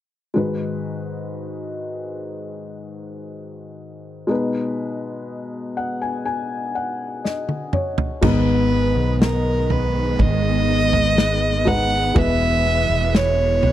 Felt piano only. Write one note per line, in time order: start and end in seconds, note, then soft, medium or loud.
0.34 4.25 G#2 soft
0.34 4.26 D#3 soft
0.34 4.25 G#3 soft
0.34 4.25 F#4 soft
0.34 4.26 B4 medium
4.27 8.19 B2 medium
4.27 8.18 G#3 medium
4.27 8.19 D#4 soft
4.31 8.20 B4 medium
5.77 6.00 F#5 soft
6.02 6.24 G#5 soft
6.25 6.72 G#5 medium
6.75 7.21 F#5 soft
7.25 7.70 D#5 soft
7.73 8.19 C#5 soft
8.21 9.66 G#2 medium
8.21 9.66 D#3 medium
8.21 10.09 G#3 medium
8.21 10.10 B3 medium
8.21 10.10 D#4 medium
11.65 12.13 G#3 medium
11.65 12.13 D#4 medium
11.65 12.14 B4 medium
12.15 13.60 B2 medium
12.15 13.72 G#3 medium
12.15 13.72 E4 medium
12.15 13.72 B4 medium